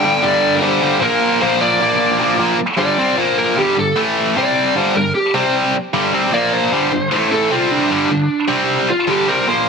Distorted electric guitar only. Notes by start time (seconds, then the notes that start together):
0.04 G2 D3 G3
0.23 G2 D3 G3
0.61 G2 D3 G3
0.81 G2 D3 G3
1.01 A#2 F3 A#3
1.41 A#2 F3 A#3
1.61 A#2 F3 A#3
1.80 A#2 F3 A#3
2.20 A#2 F3 A#3
2.39 A#2 F3 A#3
2.59 muted distorted electric guitar stroke
2.77 G2 D3 G3
2.98 C3 G3 C4
3.18 A#2 F3 A#3
3.56 G2 D3 G3
3.76 G2 D3
3.96 A2 E3 A3
4.36 C3 G3 C4
4.75 G2 D3 G3
4.95 G2 D3
5.34 C3 G3 C4
5.75 muted distorted electric guitar stroke
5.94 G2 D3 G3
6.14 C3 G3 C4
6.33 A#2 F3 A#3
6.72 G2 D3 G3
6.92 G2 D3
7.11 A2 E3 A3
7.50 C3 G3 C4
7.90 G2 D3 G3
8.10 G2 D3
8.48 C3 G3 C4
8.89 muted distorted electric guitar stroke
9.07 G2 D3 G3
9.27 C3 G3 C4
9.47 A#2 F3 A#3